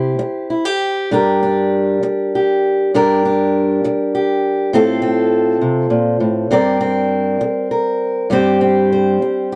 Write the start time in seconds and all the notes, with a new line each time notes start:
Already playing: C3 E4 G4 C5
0.19 muted steel-string acoustic guitar stroke
0.50 E4
0.65 G4
1.11 G2 D4 G4 A#4
1.43 D4
2.03 muted steel-string acoustic guitar stroke
2.35 G4
2.94 G2 D4 G4 A#4
3.25 D4
3.84 muted steel-string acoustic guitar stroke
4.15 G4
4.73 A2 C4 F4 A4
5.02 C4
5.61 C3
5.90 A#2
6.20 A2
6.51 G2 C4 A#4 D5
6.81 C4
7.41 muted steel-string acoustic guitar stroke
7.71 A#4
8.30 G2 G3 C4 G4 C5
8.61 C4
8.93 C5
9.22 muted steel-string acoustic guitar stroke
9.52 G4